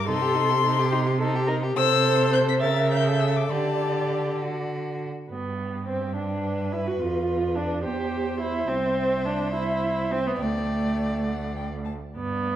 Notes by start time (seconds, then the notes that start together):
Already playing: G2
0.08 C3 D#4 A4 C6
0.22 G4
0.35 D#4
0.51 G4
0.64 D#4
0.78 G4
0.92 D#4 G4
1.06 G4
1.19 D#4 A4
1.35 G4
1.47 D#4 A#4
1.63 G4
1.75 C3 A4 C5 E6
2.33 G6
2.48 B6
2.60 C#3 A#4 E5 A6
2.92 G6
3.07 A4
3.20 E6
3.36 D6
3.50 D3 G4 D5 A5
4.42 F#4
5.29 G2 B3 G4
5.88 C4
6.16 D4 B4
6.72 E4
6.87 F#4
7.00 F2 F4 B4
7.55 D4
7.83 E2 G4 C5
8.40 E4
8.67 C2 C4 E5
9.26 D4
9.54 E4
10.12 C4
10.27 B3
10.39 D2 A3 D5 G5
11.26 F#5
11.56 G5
11.85 A5
12.14 G2 B3 D5